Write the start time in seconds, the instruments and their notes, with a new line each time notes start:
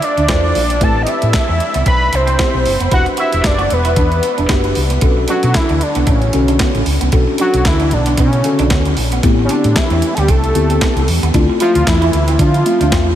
0.02 analog synth lead D5, muted clean electric guitar stroke, closed hi-hat
0.17 fingered electric bass D2, clean electric guitar D4, closed hi-hat
0.28 fingered electric bass E2, clean electric guitar C4, tine electric piano E4 F4 A4 C5, kick, snare, clap, closed hi-hat
0.44 muted clean electric guitar stroke
0.55 fingered electric bass A#1, open hi-hat
0.69 clean electric guitar C4, closed hi-hat
0.81 fingered electric bass A1, clean electric guitar A3, tine electric piano C4 E4 G4 B4, analog synth lead A5, kick, closed hi-hat
0.95 muted clean electric guitar stroke
1.02 analog synth lead D#5
1.07 clean electric guitar C4, analog synth lead E5, closed hi-hat
1.22 fingered electric bass A2, closed hi-hat
1.34 kick, snare, clap, closed hi-hat
1.48 fingered electric bass E2, clean electric guitar C4
1.60 muted clean electric guitar stroke, closed hi-hat
1.74 fingered electric bass C2, clean electric guitar B3, closed hi-hat
1.86 fingered electric bass B1, clean electric guitar C4, analog synth lead B5, kick, closed hi-hat
2.13 fingered electric bass C2, analog synth lead C5, muted clean electric guitar stroke, closed hi-hat
2.27 clean electric guitar C4, closed hi-hat
2.39 clean electric guitar B3, tine electric piano C4 E4 G4 C5, kick, snare, clap, closed hi-hat
2.54 fingered electric bass B1, muted clean electric guitar stroke
2.66 fingered electric bass F#1, open hi-hat
2.80 fingered electric bass F1, clean electric guitar B3, closed hi-hat
2.91 fingered electric bass E1, tine electric piano D4 F#4 G4 B4, clean electric guitar E4, analog synth lead F#5, kick, closed hi-hat
3.06 muted clean electric guitar stroke, closed hi-hat
3.17 clean electric guitar F#4, analog synth lead E5, closed hi-hat
3.32 fingered electric bass E1, closed hi-hat
3.44 fingered electric bass F#1, analog synth lead D5, kick, snare, clap, closed hi-hat
3.58 clean electric guitar F#4, closed hi-hat
3.70 fingered electric bass E1, analog synth lead B4, muted clean electric guitar stroke, closed hi-hat
3.85 clean electric guitar E4, closed hi-hat
3.96 fingered electric bass E2, clean electric guitar D4, kick, closed hi-hat
4.12 closed hi-hat
4.23 muted clean electric guitar stroke, closed hi-hat
4.38 fingered electric bass E1, clean electric guitar D4, closed hi-hat
4.49 fingered electric bass F#1, clean electric guitar B3, tine electric piano D4 F#4 G4 B4, kick, snare, clap, closed hi-hat
4.64 muted clean electric guitar stroke, closed hi-hat
4.75 fingered electric bass C2, open hi-hat
4.90 clean electric guitar B3, closed hi-hat
5.01 fingered electric bass B1, clean electric guitar B3, tine electric piano C#4 D4 F#4 A4, kick, closed hi-hat
5.17 muted clean electric guitar stroke
5.28 clean electric guitar D4, analog synth lead F#4, closed hi-hat
5.43 fingered electric bass B2, closed hi-hat
5.54 analog synth lead E4, kick, snare, clap, closed hi-hat
5.69 fingered electric bass D2, clean electric guitar D4, closed hi-hat
5.81 analog synth lead D4, muted clean electric guitar stroke, closed hi-hat
5.95 fingered electric bass B1, clean electric guitar B3, closed hi-hat
6.07 fingered electric bass A1, analog synth lead C#4, clean electric guitar D4, kick, closed hi-hat
6.22 closed hi-hat
6.33 fingered electric bass B1, tine electric piano D3 C#4 F#4 A4, muted clean electric guitar stroke, closed hi-hat
6.48 clean electric guitar D4, closed hi-hat
6.59 clean electric guitar B3, kick, snare, clap, closed hi-hat
6.75 fingered electric bass A1, muted clean electric guitar stroke, closed hi-hat
6.86 fingered electric bass C#2, open hi-hat
7.01 fingered electric bass C2, clean electric guitar B3, closed hi-hat
7.12 fingered electric bass B1, clean electric guitar B3, tine electric piano C#4 D4 F#4 A4, kick, closed hi-hat
7.28 muted clean electric guitar stroke
7.38 clean electric guitar D4, analog synth lead F#4, closed hi-hat
7.54 fingered electric bass B1, closed hi-hat
7.65 fingered electric bass D2, analog synth lead E4, kick, snare, clap, closed hi-hat
7.80 clean electric guitar D4, closed hi-hat
7.91 fingered electric bass B1, analog synth lead D4, muted clean electric guitar stroke, closed hi-hat
8.06 clean electric guitar B3, closed hi-hat
8.18 fingered electric bass B2, analog synth lead C#4, clean electric guitar D4, kick, closed hi-hat
8.33 closed hi-hat
8.44 tine electric piano D3 C#4 F#4 A4, muted clean electric guitar stroke, closed hi-hat
8.59 fingered electric bass B1, clean electric guitar D4, closed hi-hat
8.70 fingered electric bass D2, clean electric guitar B3, kick, snare, clap, closed hi-hat
8.85 muted clean electric guitar stroke, closed hi-hat
8.97 fingered electric bass A#1, open hi-hat
9.12 clean electric guitar B3, closed hi-hat
9.23 fingered electric bass A1, clean electric guitar A3, tine electric piano B3 C4 E4 G4, kick, closed hi-hat
9.39 muted clean electric guitar stroke
9.45 analog synth lead C#4
9.49 clean electric guitar C4, analog synth lead D4, closed hi-hat
9.64 fingered electric bass A2, closed hi-hat
9.76 analog synth lead E4, kick, snare, clap, closed hi-hat
9.90 fingered electric bass E2, clean electric guitar C4, closed hi-hat
10.02 muted clean electric guitar stroke, closed hi-hat
10.15 fingered electric bass D2, clean electric guitar B3, analog synth lead G4 A4, closed hi-hat
10.28 fingered electric bass C2, clean electric guitar C4, analog synth lead A4, kick, closed hi-hat
10.44 closed hi-hat
10.55 fingered electric bass D2, tine electric piano B3 C4 E4 G4, muted clean electric guitar stroke, closed hi-hat
10.70 clean electric guitar C4, closed hi-hat
10.81 clean electric guitar B3, kick, snare, clap, closed hi-hat
10.96 fingered electric bass C2, muted clean electric guitar stroke, closed hi-hat
11.08 fingered electric bass E2, open hi-hat
11.23 fingered electric bass D#2, clean electric guitar B3, closed hi-hat
11.34 fingered electric bass D2, tine electric piano A3 C4 E4 F4, clean electric guitar D4, kick, closed hi-hat
11.50 muted clean electric guitar stroke
11.60 clean electric guitar E4, analog synth lead F4, closed hi-hat
11.75 fingered electric bass D2, closed hi-hat
11.87 fingered electric bass E2, analog synth lead E4, kick, snare, clap, closed hi-hat
12.02 clean electric guitar E4, closed hi-hat
12.13 fingered electric bass D2, muted clean electric guitar stroke, closed hi-hat
12.28 clean electric guitar C4, closed hi-hat
12.39 fingered electric bass D3, clean electric guitar D4, analog synth lead F4, kick, closed hi-hat
12.54 closed hi-hat
12.66 tine electric piano A3 C4 F4 E5, muted clean electric guitar stroke, closed hi-hat
12.81 fingered electric bass D2, clean electric guitar D4, closed hi-hat
12.92 fingered electric bass E2, clean electric guitar C4, kick, snare, clap, closed hi-hat
13.07 muted clean electric guitar stroke